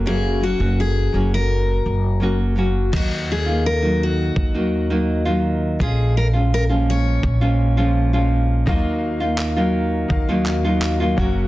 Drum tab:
CC |--------|x-------|--------|--------|
CP |--------|--------|--------|--x--xx-|
BD |--------|o---o---|o---o---|o---o--o|